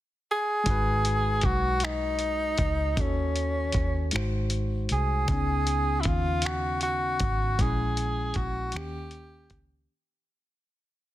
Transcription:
0.31 1.47 G#4 medium
0.64 1.40 G#1 medium
0.64 2.92 G#3 medium
0.64 2.93 D#4 medium
0.64 kick medium
0.64 closed hi-hat medium
0.69 2.95 F#4 medium
0.69 2.96 B4 medium
1.05 closed hi-hat medium
1.41 2.55 B1 medium
1.41 kick medium
1.41 closed hi-hat soft
1.46 1.86 F#4 medium
1.80 closed hi-hat medium
1.84 3.02 D#4 medium
1.84 finger snap loud
2.19 closed hi-hat soft
2.58 2.94 C#2 medium
2.58 kick medium
2.58 closed hi-hat soft
2.95 3.71 D#2 medium
2.95 4.12 D#3 soft
2.95 4.12 C#4 soft
2.95 4.13 F#4 soft
2.95 4.14 A4 medium
2.95 kick loud
2.95 closed hi-hat medium
3.00 4.14 C#4 medium
3.36 closed hi-hat soft
3.72 4.09 D#2 medium
3.72 kick medium
3.72 closed hi-hat soft
4.11 4.86 G#1 medium
4.11 5.28 G#3 medium
4.11 5.29 D#4 soft
4.11 5.29 F#4 medium
4.11 closed hi-hat medium
4.15 5.30 C5 medium
4.15 finger snap medium
4.50 closed hi-hat medium
4.89 5.25 C2 medium
4.89 6.02 G#4 medium
4.89 closed hi-hat medium
5.25 6.02 C#2 loud
5.25 7.54 C#3 medium
5.25 7.55 B3 soft
5.25 kick loud
5.25 closed hi-hat medium
5.30 7.58 C#4 medium
5.30 7.56 D#4 soft
5.67 closed hi-hat medium
6.01 6.08 E4 medium
6.01 closed hi-hat soft
6.05 7.17 D#2 medium
6.05 6.47 F4 medium
6.05 kick medium
6.42 6.82 F#4 medium
6.42 closed hi-hat medium
6.46 finger snap medium
6.81 7.63 F#4 medium
6.81 closed hi-hat medium
7.20 7.55 G#1 medium
7.20 kick medium
7.20 closed hi-hat medium
7.57 8.32 A#1 loud
7.57 8.74 A#2 soft
7.57 8.75 G#3 soft
7.57 8.75 C#4 medium
7.57 8.76 E4 medium
7.57 8.38 G#4 medium
7.57 kick loud
7.57 closed hi-hat medium
7.97 closed hi-hat soft
8.34 8.71 A#1 medium
8.34 8.77 F#4 medium
8.34 kick medium
8.34 closed hi-hat soft
8.72 9.48 D#2 medium
8.72 9.90 D#3 medium
8.72 9.90 A#3 soft
8.72 9.62 G4 medium
8.72 closed hi-hat medium
8.76 9.91 C#4 soft
8.76 9.92 G4 soft
8.76 finger snap loud
9.11 closed hi-hat soft
9.50 9.86 C#2 medium
9.50 kick medium
9.50 closed hi-hat soft

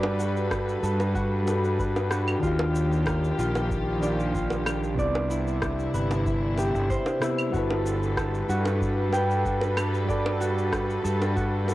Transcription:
0.00 0.75 G2 medium
0.00 1.43 G3 medium
0.00 2.39 G3 medium
0.00 11.74 D4 medium
0.00 0.19 F#4 medium
0.00 1.46 F#4 medium
0.00 2.39 F#4 medium
0.00 0.16 A4 medium
0.00 1.48 A4 medium
0.00 2.39 A4 medium
0.00 0.97 B4 medium
0.00 1.51 B4 medium
0.00 2.39 B4 medium
0.00 1.72 D5 medium
0.00 high bongo loud
0.19 1.15 F#4 medium
0.19 cabasa medium
0.37 cabasa soft
0.51 kick loud
0.51 cross-stick medium
0.51 high bongo medium
0.51 cabasa soft
0.69 cabasa soft
0.83 2.35 G2 medium
0.83 3.03 A4 medium
0.83 cabasa medium
1.00 high bongo medium
1.00 cabasa soft
1.15 2.10 F#4 medium
1.15 kick loud
1.15 cabasa soft
1.43 2.37 G3 medium
1.43 2.38 F#4 medium
1.47 2.40 A4 medium
1.47 2.41 B4 medium
1.47 high bongo medium
1.47 cabasa medium
1.64 cabasa soft
1.79 3.13 B4 medium
1.79 kick loud
1.79 cabasa soft
1.96 high bongo medium
1.96 cabasa soft
2.11 2.49 F#4 medium
2.11 cross-stick medium
2.11 cabasa medium
2.28 cabasa soft
2.28 claves medium
2.39 3.31 D#2 medium
2.39 3.97 D#3 medium
2.39 4.96 D#3 medium
2.39 4.95 A#3 medium
2.39 3.98 D4 medium
2.39 4.95 F4 medium
2.39 3.38 F4 medium
2.39 4.95 G4 medium
2.39 kick medium
2.43 3.99 G4 medium
2.43 4.01 F5 medium
2.43 cabasa soft
2.59 high bongo medium
2.75 cabasa medium
2.92 cabasa soft
3.06 5.19 A#4 medium
3.06 kick loud
3.06 cross-stick medium
3.06 high bongo medium
3.06 cabasa soft
3.24 cabasa soft
3.38 4.98 A#1 medium
3.38 4.34 F4 medium
3.38 cabasa medium
3.55 high bongo medium
3.55 cabasa soft
3.70 kick loud
3.70 cabasa soft
3.98 4.93 D#3 medium
3.98 4.94 D4 medium
4.02 4.95 G4 medium
4.02 4.98 D5 medium
4.02 4.96 F5 medium
4.02 high bongo medium
4.02 cabasa medium
4.20 cabasa soft
4.34 5.36 F4 medium
4.34 kick loud
4.34 cabasa soft
4.50 high bongo medium
4.50 cabasa soft
4.66 cross-stick medium
4.66 cabasa medium
4.66 claves medium
4.84 cabasa soft
4.94 5.86 C2 medium
4.94 6.52 C3 medium
4.94 7.51 C3 medium
4.94 11.74 G3 medium
4.94 6.54 B3 medium
4.94 7.51 B3 medium
4.94 7.51 E4 medium
4.94 6.83 D5 medium
4.94 kick loud
4.99 6.55 E4 medium
4.99 6.56 D5 medium
4.99 cabasa soft
5.15 high bongo medium
5.30 6.25 E4 medium
5.30 cabasa medium
5.47 cabasa soft
5.62 kick loud
5.62 cross-stick medium
5.62 high bongo medium
5.62 cabasa soft
5.79 cabasa soft
5.94 6.74 G1 medium
5.94 6.96 B4 medium
5.94 cabasa medium
6.11 high bongo medium
6.11 cabasa soft
6.26 7.21 E4 medium
6.26 kick loud
6.26 cabasa soft
6.58 7.59 G4 medium
6.58 high bongo medium
6.58 cabasa medium
6.74 6.96 G1 loud
6.74 cabasa soft
6.90 8.88 C5 medium
6.90 kick loud
6.90 cabasa soft
7.06 high bongo medium
7.06 cabasa soft
7.20 7.49 C3 medium
7.20 7.50 B3 medium
7.20 9.83 E4 medium
7.20 7.50 E4 medium
7.20 cross-stick medium
7.20 cabasa medium
7.24 7.51 E5 medium
7.38 cabasa soft
7.38 claves medium
7.50 8.41 G1 medium
7.50 9.08 G3 medium
7.50 9.09 F#4 medium
7.50 8.49 F#4 medium
7.50 11.74 F#4 medium
7.50 11.74 A4 medium
7.50 11.74 B4 medium
7.50 kick medium
7.54 9.10 A4 medium
7.54 9.12 B4 medium
7.54 cabasa soft
7.70 high bongo medium
7.86 cabasa medium
8.03 cabasa soft
8.17 10.37 A4 medium
8.17 kick medium
8.17 cross-stick medium
8.17 high bongo medium
8.17 cabasa soft
8.35 cabasa soft
8.49 10.97 G2 medium
8.49 9.19 F#4 medium
8.49 cabasa medium
8.65 high bongo medium
8.65 cabasa soft
8.81 kick loud
8.81 cabasa soft
9.09 10.03 G3 medium
9.09 9.51 G5 medium
9.09 high bongo medium
9.14 10.06 A4 medium
9.14 10.07 B4 medium
9.14 cabasa medium
9.31 cabasa soft
9.45 10.40 F#4 medium
9.45 kick loud
9.45 cabasa soft
9.61 high bongo medium
9.61 cabasa soft
9.77 cross-stick medium
9.77 cabasa medium
9.77 claves medium
9.94 cabasa soft
10.05 11.63 G3 medium
10.05 11.64 F#4 medium
10.05 11.74 D5 medium
10.09 11.65 A4 medium
10.09 11.67 B4 medium
10.09 kick medium
10.09 cabasa soft
10.26 high bongo medium
10.40 11.36 F#4 medium
10.40 cabasa medium
10.58 cabasa soft
10.73 kick medium
10.73 cross-stick medium
10.73 high bongo medium
10.73 cabasa soft
10.90 cabasa soft
11.04 11.74 G2 medium
11.04 11.74 A4 medium
11.04 cabasa medium
11.22 high bongo medium
11.22 cabasa soft
11.36 11.74 F#4 medium
11.36 kick loud
11.36 cabasa soft
11.64 11.74 G3 medium
11.64 11.74 F#4 medium
11.64 high bongo medium
11.69 11.74 A4 medium
11.69 cabasa medium

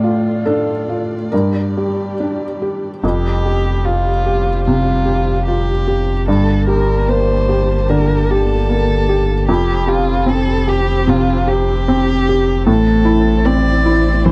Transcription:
0.00 1.29 A2 medium
0.00 1.28 A3 soft
0.00 1.33 F4 soft
0.00 0.71 F4 soft
0.00 0.42 D5 medium
0.00 3.04 D5 soft
0.46 1.15 D4 soft
0.46 1.28 A4 medium
0.89 1.32 F4 soft
1.32 3.00 G2 soft
1.32 3.02 G3 soft
1.32 3.02 G4 soft
1.32 2.14 A#4 soft
1.77 2.44 G4 soft
2.20 2.87 D4 soft
2.62 3.04 G4 soft
3.03 6.28 F1 medium
3.03 4.61 F2 medium
3.03 6.23 G3 soft
3.03 6.23 G4 soft
3.03 3.86 G4 soft
3.03 6.23 C5 soft
3.46 4.10 G4 soft
3.85 4.65 F4 medium
3.85 4.50 F4 soft
4.26 4.90 G4 soft
4.66 5.31 C3 soft
4.66 5.45 F4 soft
5.06 5.71 G4 soft
5.47 6.12 F4 soft
5.47 6.26 G4 medium
5.88 6.27 G4 soft
6.27 9.50 G1 medium
6.27 7.86 G2 medium
6.27 9.48 A#3 soft
6.27 9.44 G4 soft
6.27 6.67 A4 medium
6.27 9.48 A5 soft
6.67 7.32 G4 soft
6.67 7.10 A#4 medium
7.08 7.73 A#3 soft
7.08 7.91 C5 medium
7.49 8.14 G4 soft
7.89 8.53 D3 soft
7.89 8.32 A#4 medium
8.30 8.94 G4 soft
8.30 9.48 A4 medium
8.69 9.32 A#3 soft
9.09 9.48 G4 soft
9.48 12.68 F1 medium
9.48 11.04 F2 medium
9.48 12.65 C4 medium
9.48 12.63 G4 medium
9.48 9.90 G4 medium
9.48 12.64 C5 medium
9.88 10.30 F4 medium
9.88 10.51 G4 medium
10.26 10.91 C4 soft
10.26 10.70 A4 medium
10.68 11.32 G4 medium
10.68 11.10 G4 medium
11.07 11.72 C3 medium
11.07 11.50 F4 medium
11.47 12.12 G4 medium
11.47 12.67 G4 medium
11.88 12.52 C4 medium
12.29 12.68 G4 medium
12.65 14.32 A1 medium
12.65 14.21 A2 medium
12.65 14.32 C4 medium
12.65 14.32 E4 medium
12.65 13.46 A4 medium
12.65 14.32 C5 medium
13.05 13.69 E4 medium
13.45 14.10 C4 medium
13.45 14.26 D5 medium
13.86 14.32 E4 medium
14.25 14.32 E3 medium
14.25 14.32 C5 medium

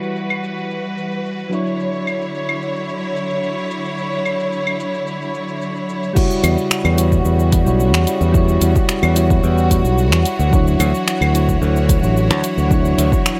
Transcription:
0.00 1.48 E3 medium
0.00 1.48 G3 medium
0.00 1.49 E4 medium
0.00 1.48 F#4 medium
0.00 1.50 F#4 medium
0.00 1.51 B4 medium
0.00 1.51 C#5 medium
0.00 cabasa soft
0.16 cabasa soft
0.30 cabasa soft
0.30 claves medium
0.44 cabasa medium
0.57 cabasa soft
0.71 cabasa soft
0.85 cabasa soft
0.98 cabasa medium
1.12 cabasa soft
1.25 cabasa soft
1.39 cabasa soft
1.49 6.12 D3 medium
1.49 5.84 F#3 medium
1.49 6.12 F#3 medium
1.49 5.85 D4 medium
1.49 6.12 E4 medium
1.49 5.86 E4 medium
1.49 6.12 C#5 medium
1.49 cabasa medium
1.55 5.87 C#5 medium
1.67 cabasa soft
1.80 cabasa soft
1.94 cabasa soft
2.07 cabasa medium
2.07 claves soft
2.21 cabasa soft
2.35 cabasa soft
2.49 cabasa soft
2.49 claves medium
2.62 cabasa medium
2.76 cabasa soft
2.89 cabasa soft
3.03 cabasa soft
3.16 cabasa medium
3.30 cabasa soft
3.44 cabasa soft
3.58 cabasa soft
3.71 cabasa medium
3.85 cabasa soft
3.98 cabasa soft
4.12 cabasa soft
4.25 cabasa medium
4.25 claves soft
4.40 cabasa soft
4.53 cabasa soft
4.67 cabasa soft
4.67 claves medium
4.80 cabasa medium
4.94 cabasa soft
5.07 cabasa soft
5.21 cabasa soft
5.34 cabasa medium
5.49 cabasa soft
5.62 cabasa soft
5.76 cabasa soft
5.89 cabasa medium
6.03 cabasa soft
6.13 10.21 C#3 medium
6.13 6.93 G3 medium
6.13 10.21 G3 medium
6.13 6.94 E4 medium
6.13 13.40 F#4 medium
6.13 6.95 F#4 medium
6.13 kick loud
6.13 crash loud
6.13 cabasa soft
6.18 6.96 C#5 medium
6.31 cabasa soft
6.43 6.55 E2 loud
6.43 closed hi-hat medium
6.43 cabasa medium
6.43 claves medium
6.58 cabasa soft
6.71 finger snap medium
6.71 cabasa soft
6.85 7.22 E2 medium
6.85 cabasa soft
6.85 claves medium
6.96 7.14 G3 medium
6.96 7.15 E4 medium
6.96 7.15 F#4 medium
6.96 7.15 C#5 medium
6.96 closed hi-hat medium
6.96 cabasa medium
7.12 kick medium
7.12 cabasa soft
7.25 7.63 E2 medium
7.25 cabasa soft
7.39 cabasa soft
7.52 kick loud
7.52 closed hi-hat medium
7.52 cabasa medium
7.65 7.94 B1 medium
7.65 7.82 G3 medium
7.65 7.83 E4 medium
7.65 7.83 F#4 medium
7.65 7.84 C#5 medium
7.65 cabasa soft
7.80 cabasa soft
7.94 8.05 E2 medium
7.94 finger snap medium
7.94 cabasa soft
8.07 closed hi-hat loud
8.07 cabasa medium
8.21 8.58 E2 loud
8.21 cabasa soft
8.32 9.12 G3 loud
8.32 9.13 E4 medium
8.32 9.14 F#4 medium
8.32 kick loud
8.32 cabasa soft
8.37 9.14 C#5 loud
8.48 cabasa soft
8.61 8.73 E2 loud
8.61 closed hi-hat medium
8.61 cabasa medium
8.76 kick loud
8.76 cabasa soft
8.89 finger snap medium
8.89 cabasa soft
9.03 9.40 E2 medium
9.03 cabasa soft
9.03 claves medium
9.15 9.67 G3 medium
9.15 9.68 E4 medium
9.15 9.68 F#4 medium
9.15 9.69 C#5 loud
9.15 closed hi-hat medium
9.15 cabasa medium
9.30 kick loud
9.30 cabasa soft
9.43 9.81 E2 loud
9.43 cabasa soft
9.58 cabasa soft
9.70 10.23 G3 medium
9.70 10.24 E4 medium
9.70 10.24 F#4 medium
9.70 10.25 C#5 medium
9.70 kick medium
9.70 closed hi-hat medium
9.70 cabasa medium
9.84 10.12 B1 medium
9.84 cabasa soft
9.98 cabasa soft
10.12 10.23 E2 medium
10.12 finger snap medium
10.12 cabasa soft
10.25 13.40 E3 medium
10.25 13.40 C#5 medium
10.25 closed hi-hat medium
10.25 cabasa medium
10.39 10.76 D2 medium
10.39 cabasa soft
10.50 11.30 F#3 medium
10.50 11.31 D4 medium
10.50 11.32 E4 medium
10.50 kick loud
10.50 cabasa soft
10.55 11.33 C#5 medium
10.67 cabasa soft
10.80 10.92 D2 loud
10.80 closed hi-hat medium
10.80 cabasa medium
10.80 claves medium
10.95 cabasa soft
11.08 finger snap medium
11.08 cabasa soft
11.21 11.58 D2 loud
11.21 cabasa soft
11.21 claves medium
11.33 11.51 F#3 medium
11.33 11.52 D4 medium
11.33 11.52 E4 medium
11.33 11.52 C#5 medium
11.33 closed hi-hat medium
11.33 cabasa medium
11.49 kick medium
11.49 cabasa soft
11.62 11.99 D2 medium
11.62 cabasa soft
11.76 cabasa soft
11.89 kick loud
11.89 closed hi-hat medium
11.89 cabasa medium
12.02 12.30 A1 medium
12.02 12.19 F#3 medium
12.02 12.19 D4 medium
12.02 12.20 E4 medium
12.02 12.20 C#5 medium
12.02 cabasa soft
12.17 cabasa soft
12.30 12.41 D2 medium
12.30 finger snap medium
12.30 cabasa soft
12.44 closed hi-hat medium
12.44 cabasa medium
12.57 12.95 D2 medium
12.57 cabasa soft
12.68 13.40 F#3 medium
12.68 13.40 D4 medium
12.68 13.40 E4 medium
12.68 kick loud
12.68 cabasa soft
12.74 13.40 C#5 loud
12.85 cabasa soft
12.98 13.10 D2 loud
12.98 closed hi-hat medium
12.98 cabasa medium
13.12 kick loud
13.12 cabasa soft
13.26 finger snap medium
13.26 cabasa soft

